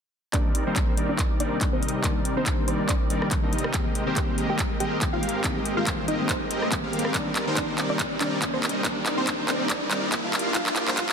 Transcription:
0.33 ambient pad C3 D#3 A#3 D5, tine electric piano D#3 G3 A#3 D4, supersaw synth G3 C4 D#4 A#4 D5, synth pluck D4 D5, kick, clap, closed hi-hat, riser
0.55 closed hi-hat
0.66 tine electric piano D#3 G3 A#3 D4, supersaw synth G3 C4 D#4 A#4 C5
0.76 synth pluck D4 D5, kick, clap, closed hi-hat
0.97 supersaw synth G3 C4 D#4 A#4 D5, closed hi-hat
1.08 tine electric piano D#3 G3 A#3 D4, synth pluck D4 D5
1.19 kick, clap, closed hi-hat
1.39 tine electric piano D#3 G3 A#3 D4, supersaw synth G3 C4 D#4 A#4 D5, synth pluck D4 D5, closed hi-hat
1.61 kick, clap, closed hi-hat
1.72 tine electric piano D#3 G3 A#3 D4, supersaw synth G3 C4 D#4 A#4 D#5, synth pluck C4 C5
1.83 closed hi-hat
1.89 closed hi-hat
2.03 tine electric piano D#3 G3 A#3 D4, supersaw synth G3 C4 D#4 A#4 D5, kick, clap, closed hi-hat
2.25 closed hi-hat
2.36 tine electric piano D#3 G3 A#3 D4, supersaw synth G3 C4 D#4 A#4 C5, synth pluck C4 C5
2.46 kick, clap, closed hi-hat
2.68 supersaw synth G3 C4 D#4 A#4 D5, synth pluck C4 C5, closed hi-hat
2.78 tine electric piano D#3 G3 A#3 D4
2.89 synth pluck D4 D5, kick, clap, closed hi-hat
3.09 tine electric piano D#3 G3 A#3 D4, supersaw synth G3 C4 D#4 A#4 D5, closed hi-hat
3.22 cross-stick
3.31 kick, clap, closed hi-hat
3.42 tine electric piano D#3 G3 A#3 D4, supersaw synth G3 C4 D#4 A#4 D#5
3.53 closed hi-hat
3.58 closed hi-hat
3.64 cross-stick
3.73 ambient pad G#2 C4 G4, tine electric piano D#3 G3 A#3 C4, supersaw synth G#3 C4 G4 A#4 D#5, synth pluck G4 G5, kick, clap, closed hi-hat
3.95 closed hi-hat
4.06 tine electric piano D#3 G3 A#3 C4, supersaw synth G#3 C4 G4 A#4 C5
4.16 synth pluck G4 G5, kick, clap, closed hi-hat
4.38 supersaw synth G#3 C4 G4 A#4 D#5, closed hi-hat
4.49 tine electric piano D#3 G3 A#3 C4, synth pluck G4 G5
4.59 kick, clap, closed hi-hat
4.79 tine electric piano D#3 G3 A#3 C4, supersaw synth G#3 C4 G4 A#4 D#5, synth pluck G4 G5, closed hi-hat
5.01 kick, clap, closed hi-hat
5.13 tine electric piano D#3 G3 A#3 C4, supersaw synth G#3 C4 G4 A#4 F5, synth pluck F4 F5
5.23 closed hi-hat
5.29 closed hi-hat
5.43 tine electric piano D#3 G3 A#3 C4, supersaw synth G#3 C4 G4 A#4 D#5, kick, clap, closed hi-hat
5.66 closed hi-hat
5.76 tine electric piano D#3 G3 A#3 C4, supersaw synth G#3 C4 G4 A#4 C5, synth pluck F4 F5
5.87 kick, clap, closed hi-hat
6.08 supersaw synth G#3 C4 G4 A#4 D#5, synth pluck D#4 D#5, closed hi-hat
6.19 tine electric piano D#3 G3 A#3 C4
6.29 synth pluck C4 C5, kick, clap, closed hi-hat
6.51 supersaw synth G#3 C4 G4 A#4 D#5, closed hi-hat
6.62 cross-stick
6.71 tine electric piano D#3 G3 A#3 C4, kick, clap, closed hi-hat
6.83 supersaw synth G#3 C4 G4 A#4 F5
6.92 tine electric piano D#3 G3 A#3 C4, closed hi-hat
6.99 closed hi-hat
7.05 cross-stick
7.14 ambient pad C3 D#3 D5, tine electric piano D#3 G3 A#3 D4, supersaw synth G3 C4 D#4 A#4 D5, synth pluck D4 D5, kick, clap, closed hi-hat
7.36 clap, closed hi-hat
7.46 tine electric piano D#3 G3 A#3 D4, supersaw synth G3 C4 D#4 A#4 C5
7.57 synth pluck D4 D5, kick, clap, closed hi-hat
7.78 supersaw synth G3 C4 D#4 A#4 D5, clap, closed hi-hat
7.89 tine electric piano D#3 G3 A#3 D4, synth pluck D4 D5
7.99 kick, clap, closed hi-hat
8.20 tine electric piano D#3 G3 A#3 D4, supersaw synth G3 C4 D#4 A#4 D5, synth pluck D4 D5, clap, closed hi-hat
8.42 kick, clap, closed hi-hat
8.53 tine electric piano D#3 G3 A#3 D4, supersaw synth G3 C4 D#4 A#4 D#5, synth pluck C4 C5
8.63 clap, closed hi-hat
8.69 closed hi-hat
8.83 tine electric piano D#3 G3 A#3 D4, supersaw synth G3 C4 D#4 A#4 D5, kick, clap, closed hi-hat
9.06 clap, closed hi-hat
9.17 tine electric piano D#3 G3 A#3 D4, supersaw synth G3 C4 D#4 A#4 C5, synth pluck C4 C5
9.27 kick, clap, closed hi-hat
9.48 supersaw synth G3 C4 D#4 A#4 D5, synth pluck C4 C5, clap, closed hi-hat
9.59 tine electric piano D#3 G3 A#3 D4
9.70 synth pluck D4 D5, kick, clap, closed hi-hat
9.90 tine electric piano D#3 G3 A#3 D4, supersaw synth G3 C4 D#4 A#4 D5, clap, closed hi-hat
10.12 kick, clap, closed hi-hat
10.23 tine electric piano D#3 G3 A#3 D4, supersaw synth G3 D4 F4 A#4 F5
10.33 ambient pad G2 G3 F4, clap, closed hi-hat
10.39 closed hi-hat
10.54 tine electric piano F3 G3 A#3 D4, supersaw synth G3 D4 F4 A#4 D5, synth pluck F4 F5, kick, clap, closed hi-hat
10.66 clap
10.76 clap, closed hi-hat
10.87 tine electric piano F3 G3 A#3 D4, supersaw synth G3 D4 F4 A#4 C5, clap
10.97 synth pluck F4 F5, kick, clap, closed hi-hat
11.09 clap

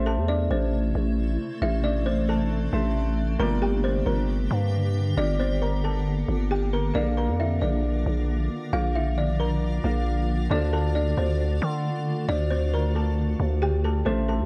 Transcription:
Already playing: 808-style bass A1, ambient pad C3 A3 E4, harp A3 A4 C5 E5
0.06 kalimba A4 A5
0.17 808-style bass E2
0.28 kalimba D4 D5
0.51 808-style bass A1, kalimba C4 C5
0.95 808-style bass A1
1.62 808-style bass A1, ambient pad D4, kalimba E4 E5
1.84 kalimba D4 D5
2.06 kalimba C4 C5
2.29 kalimba A4 A5
2.72 808-style bass A1, harp A3 A4 C5 E5
3.39 808-style bass G1, ambient pad D3 A#3 G4, harp G3 A#3 G4 D5, kalimba A#4 A#5
3.62 kalimba G4 G5
3.84 kalimba C4 C5
4.06 808-style bass G1, kalimba A#4 A#5
4.51 808-style bass G2
5.17 808-style bass G1, kalimba D4 D5, ambient pad A4
5.39 kalimba C4 C5
5.62 kalimba A#4 A#5
5.84 kalimba A4 A5
6.28 808-style bass G1
6.51 kalimba G4 G5
6.73 kalimba A#4 A#5
6.93 808-style bass A#1, harp A#3 A#4 D5 F5, kalimba D4 D5, ambient pad F4
7.17 kalimba A#4 A#5
7.29 808-style bass F2
7.40 kalimba E4 E5
7.61 808-style bass A#1, kalimba D4 D5
8.06 808-style bass A#1
8.73 808-style bass A#1, kalimba F4 F5
8.95 kalimba E4 E5
9.18 kalimba D4 D5
9.40 kalimba A#4 A#5
9.84 808-style bass A#1, harp A#3 A#4 D5 F5
10.49 808-style bass D2, harp D3 D4 F4 A4, ambient pad A3, kalimba D4 D5
10.73 kalimba A4 A5
10.95 kalimba D4 D5
11.17 808-style bass D2, kalimba C4 C5
11.62 808-style bass D3
12.29 808-style bass D2, kalimba D4 D5
12.51 kalimba C4 C5
12.74 kalimba A#4 A#5
12.95 kalimba A4 A5
13.40 808-style bass D2
13.62 kalimba G4 G5
13.84 kalimba A4 A5
14.05 808-style bass A1, ambient pad C3 A3 E4, harp A3 A4 C5 E5, kalimba C4 C5
14.28 kalimba A4 A5
14.40 808-style bass E2

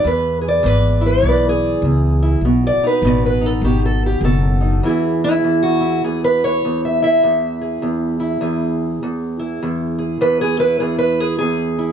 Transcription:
0.04 steel-string acoustic guitar E2 B4, upright bass E2
0.41 steel-string acoustic guitar G#4
0.48 steel-string acoustic guitar D5
0.63 upright bass G#1, steel-string acoustic guitar E2 B4
1.01 steel-string acoustic guitar E4
1.06 steel-string acoustic guitar D5
1.23 upright bass B1, steel-string acoustic guitar E2
1.29 steel-string acoustic guitar B4
1.49 steel-string acoustic guitar G#4
1.82 upright bass C#2, steel-string acoustic guitar E2
2.22 steel-string acoustic guitar E4
2.41 upright bass B1, steel-string acoustic guitar B2
2.67 steel-string acoustic guitar D5
2.77 muted upright bass stroke
2.83 steel-string acoustic guitar D#4 B4
3.02 upright bass A1, steel-string acoustic guitar B2
3.07 steel-string acoustic guitar D5
3.26 steel-string acoustic guitar B4
3.41 steel-string acoustic guitar D#4
3.46 steel-string acoustic guitar A4
3.61 upright bass G#1, steel-string acoustic guitar B2 G4
3.86 steel-string acoustic guitar A4
4.06 steel-string acoustic guitar G4
4.21 upright bass F#1, steel-string acoustic guitar B2 A4
4.61 steel-string acoustic guitar D#4
4.83 steel-string acoustic guitar E2 E3 E4 G#4
5.24 steel-string acoustic guitar E4
5.44 steel-string acoustic guitar E2
5.63 steel-string acoustic guitar F#4
5.81 steel-string acoustic guitar E4
6.04 steel-string acoustic guitar E2 G#4
6.24 steel-string acoustic guitar B4
6.44 steel-string acoustic guitar C#5
6.65 steel-string acoustic guitar E2
6.85 steel-string acoustic guitar E5
7.02 steel-string acoustic guitar E4 E5
7.23 steel-string acoustic guitar E2
7.61 steel-string acoustic guitar G#4
7.82 steel-string acoustic guitar E2
8.20 steel-string acoustic guitar E4
8.41 steel-string acoustic guitar E2 G#4
9.03 steel-string acoustic guitar E2
9.39 steel-string acoustic guitar E4
9.62 steel-string acoustic guitar E2
9.98 steel-string acoustic guitar G#4
10.21 steel-string acoustic guitar E2 B4
10.41 steel-string acoustic guitar G#4
10.58 steel-string acoustic guitar E4 B4
10.80 steel-string acoustic guitar E2 G#4
10.98 steel-string acoustic guitar B4
11.20 steel-string acoustic guitar G#4
11.39 steel-string acoustic guitar E2 G#4
11.78 steel-string acoustic guitar E4

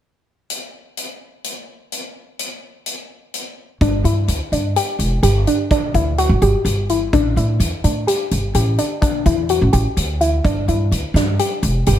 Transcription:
0.50 closed hi-hat
0.97 closed hi-hat
1.44 closed hi-hat
1.92 closed hi-hat
2.39 closed hi-hat
2.86 closed hi-hat
3.34 closed hi-hat
3.81 upright bass G1, synth arpeggio sound D4, kick, closed hi-hat
4.04 upright bass G2, synth arpeggio sound E4, closed hi-hat
4.28 upright bass D2, closed hi-hat
4.52 upright bass G2, synth arpeggio sound D4, closed hi-hat
4.76 synth arpeggio sound G4, closed hi-hat
4.99 upright bass E1, closed hi-hat
5.23 upright bass G1, synth arpeggio sound G4, closed hi-hat
5.47 synth arpeggio sound D4, closed hi-hat
5.71 synth arpeggio sound D4, kick, closed hi-hat
5.94 upright bass D2, synth arpeggio sound E4, kick, closed hi-hat
6.18 synth arpeggio sound F#4, closed hi-hat
6.29 upright bass G1
6.42 upright bass G1, synth arpeggio sound G4, closed hi-hat
6.65 upright bass G1, closed hi-hat
6.89 synth arpeggio sound E4, closed hi-hat
7.13 upright bass A1, synth arpeggio sound D4, kick, closed hi-hat
7.36 upright bass A2, synth arpeggio sound E4, closed hi-hat
7.60 upright bass E2, closed hi-hat
7.84 upright bass A2, synth arpeggio sound D4, closed hi-hat
8.07 synth arpeggio sound G4, closed hi-hat
8.31 upright bass G1, closed hi-hat
8.54 upright bass A1, synth arpeggio sound G4, closed hi-hat
8.78 synth arpeggio sound D4, closed hi-hat
9.02 synth arpeggio sound D4, kick, closed hi-hat
9.26 upright bass E2, synth arpeggio sound E4, kick, closed hi-hat
9.49 synth arpeggio sound F#4, closed hi-hat
9.61 upright bass A1
9.73 upright bass A1, synth arpeggio sound G4, closed hi-hat
9.97 upright bass D2, closed hi-hat
10.21 synth arpeggio sound E4, closed hi-hat
10.45 upright bass G1, synth arpeggio sound D4, kick, closed hi-hat
10.68 upright bass G2, synth arpeggio sound E4, closed hi-hat
10.91 upright bass D2, closed hi-hat
11.14 upright bass G2, synth arpeggio sound D4, snare, closed hi-hat
11.39 synth arpeggio sound G4, closed hi-hat
11.63 upright bass E1, closed hi-hat
11.86 upright bass G1, synth arpeggio sound G4, closed hi-hat

